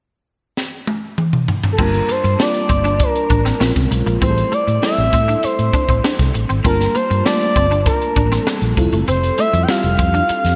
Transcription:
0.57 snare
0.87 high tom
1.18 mid tom
1.33 mid tom
1.48 floor tom
1.64 floor tom
1.72 analog synth lead A4
1.78 fretless electric bass G1, fm electric piano G3 A#3 D4 F4 A5, clean electric guitar C4, analog synth lead A#4, kick, crash
1.94 closed hi-hat
2.09 clean electric guitar A#3, analog synth lead C5, closed hi-hat
2.24 fretless electric bass G2, muted clean electric guitar stroke, closed hi-hat
2.39 fm electric piano G3 A#3 D4 F4 A5, analog synth lead D5, muted clean electric guitar stroke, snare
2.54 closed hi-hat
2.69 fretless electric bass G1, clean electric guitar C4, kick, closed hi-hat
2.84 clean electric guitar D4, closed hi-hat
3.00 analog synth lead A#4, muted clean electric guitar stroke, kick, closed hi-hat
3.16 closed hi-hat
3.30 fretless electric bass A1, clean electric guitar D4, kick, closed hi-hat
3.45 clean electric guitar C4, snare, closed hi-hat
3.60 fretless electric bass A#1, fm electric piano G#3 C4 C#4 F4 A#4, clean electric guitar C#4, snare
3.76 fretless electric bass C2, kick, closed hi-hat
3.91 fretless electric bass B1, muted clean electric guitar stroke, closed hi-hat
4.06 fretless electric bass A#1, clean electric guitar A#3, closed hi-hat
4.21 fretless electric bass A1, fm electric piano G3 A3 C4 E4 G#4, clean electric guitar C4, analog synth lead C5, kick, closed hi-hat
4.29 fm electric piano A4
4.38 closed hi-hat
4.52 clean electric guitar A3, analog synth lead D5, closed hi-hat
4.67 fretless electric bass A2, muted clean electric guitar stroke, closed hi-hat
4.82 fm electric piano G3 A3 C4 E4 A4, analog synth lead E5, muted clean electric guitar stroke, snare
4.98 fretless electric bass A1, closed hi-hat
5.13 fretless electric bass A2, clean electric guitar C4, kick, closed hi-hat
5.28 clean electric guitar D4, closed hi-hat
5.43 analog synth lead C5, muted clean electric guitar stroke, muted fretless electric bass stroke, closed hi-hat
5.59 fretless electric bass A2, closed hi-hat
5.73 clean electric guitar D4, kick, closed hi-hat
5.88 fretless electric bass A1, clean electric guitar C4, kick, closed hi-hat
6.04 clean electric guitar D4, snare
6.19 fretless electric bass C2, kick, snare, closed hi-hat
6.34 fretless electric bass A1, muted clean electric guitar stroke, closed hi-hat
6.49 fretless electric bass G#1, clean electric guitar C4, closed hi-hat
6.64 fretless electric bass G1, fm electric piano G3 A#3 D4 F4 A5, clean electric guitar C4, analog synth lead A#4, kick, closed hi-hat
6.80 snare, closed hi-hat
6.95 clean electric guitar A#3, analog synth lead C5, closed hi-hat
7.10 fretless electric bass G2, muted clean electric guitar stroke, closed hi-hat
7.25 fm electric piano G3 A3 D4 F4 A5, analog synth lead D5, muted clean electric guitar stroke, snare
7.32 fm electric piano A#3
7.41 closed hi-hat
7.56 fretless electric bass G1, clean electric guitar C4, kick, closed hi-hat
7.71 clean electric guitar D4, closed hi-hat
7.86 analog synth lead A#4, muted clean electric guitar stroke, kick, closed hi-hat
8.01 closed hi-hat
8.16 fretless electric bass A1, clean electric guitar D4, kick, closed hi-hat
8.32 clean electric guitar C4, snare, closed hi-hat
8.45 clean electric guitar D4, analog synth lead A4, snare
8.62 fretless electric bass A#1, closed hi-hat
8.77 fretless electric bass F1, fm electric piano G3 C4 E4 F4 A4, muted clean electric guitar stroke, kick, closed hi-hat
8.92 fretless electric bass F#1, clean electric guitar A3, closed hi-hat
9.08 fretless electric bass F1, clean electric guitar C4, analog synth lead C5, closed hi-hat
9.23 closed hi-hat
9.38 clean electric guitar A3, analog synth lead E5, closed hi-hat
9.53 fretless electric bass F2, muted clean electric guitar stroke, closed hi-hat
9.63 analog synth lead G5
9.68 fm electric piano G3 C4 F4 G4 A4, analog synth lead F5, muted clean electric guitar stroke, snare
9.83 fretless electric bass F1, closed hi-hat
9.99 fretless electric bass F2, clean electric guitar C4, kick, closed hi-hat
10.14 clean electric guitar D4, closed hi-hat
10.29 muted clean electric guitar stroke, muted fretless electric bass stroke, closed hi-hat
10.45 fretless electric bass F2, snare, closed hi-hat

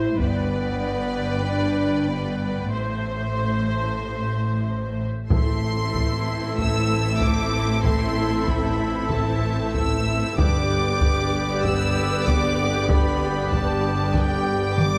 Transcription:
Already playing: double bass section A1, cello section A2, french horn section E4, viola section C5, violin section C5 E5
0.18 double bass section G1, cello section G2, french horn section B3, viola section B4, violin section D5 G5, taiko
1.44 french horn section D4
2.09 french horn section B3
2.72 double bass section A1, cello section A2, french horn section A3, viola section C5, violin section C5 E5
5.29 double bass section A1, cello section A2, timpani A2, trombone section E3 A3, woodwind section A3 E4 A4 E5, viola section C4 E4, french horn section C4 E4, trumpet section A4, violin section A4 E5 C6, taiko
5.95 taiko
6.58 violin section E6, taiko
7.21 violin section D6, taiko
7.84 violin section C6, taiko
8.47 violin section B5, taiko
9.10 violin section A5, taiko
9.74 violin section E6, taiko
10.37 double bass section G1, cello section G2, trombone section D3 G3, viola section B3 G4, french horn section B3 G4, woodwind section B3 D4 G4 G5, violin section B4 D5 D6, trumpet section D5, taiko
11.01 taiko
11.64 violin section E6, taiko
12.26 violin section D6, taiko
12.89 violin section B5, taiko
13.52 violin section A5, taiko
14.14 violin section G5, taiko
14.78 violin section D6, taiko mid

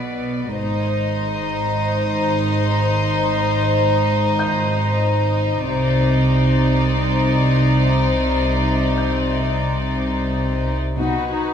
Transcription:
Already playing: double bass section B1, cello section B2, violin section B3 B4 D5
0.55 double bass section G#1, cello section G#2, violin section D#4 C5 D#5 D#6
1.19 violin section C6
4.39 grand piano G6
5.68 double bass section C2, cello section C3, violin section D#4 C5 D5
8.98 grand piano G6
10.97 double bass section B1, cello section B2, viola section D#4, violin section F#4 B4 F#6 G#6
11.30 viola section D#4, violin section F#4 B4

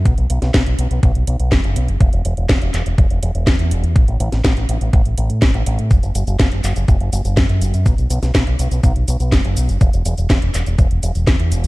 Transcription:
0.05 fingered electric bass B1, kick, closed hi-hat
0.18 fingered electric bass B1, closed hi-hat
0.30 fingered electric bass B1, closed hi-hat
0.42 fingered electric bass B1, snare, closed hi-hat
0.54 fingered electric bass B1, kick, snare, clap, closed hi-hat
0.66 fingered electric bass B1, closed hi-hat
0.79 fingered electric bass B1, closed hi-hat
0.91 fingered electric bass B1, closed hi-hat
1.03 fingered electric bass B1, kick, closed hi-hat
1.15 fingered electric bass B1, closed hi-hat
1.27 fingered electric bass B1, closed hi-hat
1.40 fingered electric bass B1, closed hi-hat
1.52 fingered electric bass F#1, kick, snare, clap, closed hi-hat
1.64 fingered electric bass F#1, closed hi-hat
1.76 fingered electric bass B1, closed hi-hat
1.88 fingered electric bass F#1, closed hi-hat
2.01 fingered electric bass E1, kick, closed hi-hat
2.13 fingered electric bass E1, closed hi-hat
2.25 fingered electric bass E1, closed hi-hat
2.37 fingered electric bass E1, closed hi-hat
2.49 fingered electric bass E1, kick, snare, clap, closed hi-hat
2.61 fingered electric bass E1, closed hi-hat
2.74 fingered electric bass E1, clap, closed hi-hat
2.86 fingered electric bass E1, closed hi-hat
2.98 fingered electric bass E1, kick, closed hi-hat
3.10 fingered electric bass E1, closed hi-hat
3.22 fingered electric bass E1, closed hi-hat
3.35 fingered electric bass E1, closed hi-hat
3.47 fingered electric bass E2, kick, snare, clap, closed hi-hat
3.59 fingered electric bass E2, closed hi-hat
3.71 fingered electric bass E1, closed hi-hat
3.83 fingered electric bass E2, closed hi-hat
3.96 fingered electric bass A1, kick, closed hi-hat
4.08 fingered electric bass A1, closed hi-hat
4.20 fingered electric bass A1, closed hi-hat
4.32 fingered electric bass A1, snare, closed hi-hat
4.44 fingered electric bass A1, kick, snare, clap, closed hi-hat
4.57 fingered electric bass A1, closed hi-hat
4.69 fingered electric bass A1, closed hi-hat
4.81 fingered electric bass A1, closed hi-hat
4.93 fingered electric bass A1, kick, closed hi-hat
5.05 fingered electric bass A1, closed hi-hat
5.18 fingered electric bass A1, closed hi-hat
5.30 fingered electric bass A2, closed hi-hat
5.42 fingered electric bass A1, kick, snare, clap, closed hi-hat
5.54 fingered electric bass A1, closed hi-hat
5.66 fingered electric bass A1, closed hi-hat
5.78 fingered electric bass A2, closed hi-hat
5.91 fingered electric bass F#1, kick, closed hi-hat, cabasa
6.03 fingered electric bass F#1, closed hi-hat, cabasa
6.15 fingered electric bass F#1, closed hi-hat, cabasa
6.27 fingered electric bass F#1, closed hi-hat, cabasa
6.40 fingered electric bass F#1, kick, snare, clap, closed hi-hat, cabasa
6.52 fingered electric bass F#1, closed hi-hat
6.64 fingered electric bass F#1, clap, closed hi-hat, cabasa
6.76 fingered electric bass F#1, closed hi-hat, cabasa
6.88 fingered electric bass F#1, kick, closed hi-hat, cabasa
7.00 fingered electric bass F#1, closed hi-hat
7.13 fingered electric bass F#1, closed hi-hat, cabasa
7.25 fingered electric bass F#1, closed hi-hat, cabasa
7.37 fingered electric bass F#2, kick, snare, clap, closed hi-hat, cabasa
7.49 fingered electric bass F#2, closed hi-hat
7.61 fingered electric bass F#1, closed hi-hat, cabasa
7.74 fingered electric bass F#2, closed hi-hat, cabasa
7.86 fingered electric bass B1, kick, closed hi-hat, cabasa
7.98 fingered electric bass B1, closed hi-hat, cabasa
8.10 fingered electric bass B1, closed hi-hat, cabasa
8.22 fingered electric bass B1, snare, closed hi-hat, cabasa
8.35 fingered electric bass B1, kick, snare, clap, closed hi-hat, cabasa
8.47 fingered electric bass B1, closed hi-hat
8.59 fingered electric bass B1, closed hi-hat, cabasa
8.71 fingered electric bass B1, closed hi-hat, cabasa
8.83 fingered electric bass B1, kick, closed hi-hat, cabasa
8.96 fingered electric bass B1, closed hi-hat
9.08 fingered electric bass B1, closed hi-hat, cabasa
9.20 fingered electric bass B1, closed hi-hat, cabasa
9.32 fingered electric bass F#1, kick, snare, clap, closed hi-hat, cabasa
9.44 fingered electric bass F#1, closed hi-hat
9.57 fingered electric bass B1, closed hi-hat, cabasa
9.69 fingered electric bass F#1, closed hi-hat, cabasa
9.81 fingered electric bass E1, kick, closed hi-hat, cabasa
9.93 fingered electric bass E1, closed hi-hat, cabasa
10.05 fingered electric bass E1, closed hi-hat, cabasa
10.18 fingered electric bass E1, closed hi-hat, cabasa
10.30 fingered electric bass E1, kick, snare, clap, closed hi-hat, cabasa
10.42 fingered electric bass E1, closed hi-hat
10.54 fingered electric bass E1, clap, closed hi-hat, cabasa
10.66 fingered electric bass E1, closed hi-hat, cabasa
10.79 fingered electric bass E1, kick, closed hi-hat, cabasa
10.91 fingered electric bass E1, closed hi-hat
11.03 fingered electric bass E1, closed hi-hat, cabasa
11.15 fingered electric bass E1, closed hi-hat, cabasa
11.27 fingered electric bass E2, kick, snare, clap, closed hi-hat, cabasa
11.39 fingered electric bass E2, closed hi-hat
11.52 fingered electric bass E1, closed hi-hat, cabasa
11.64 fingered electric bass E2, closed hi-hat, cabasa

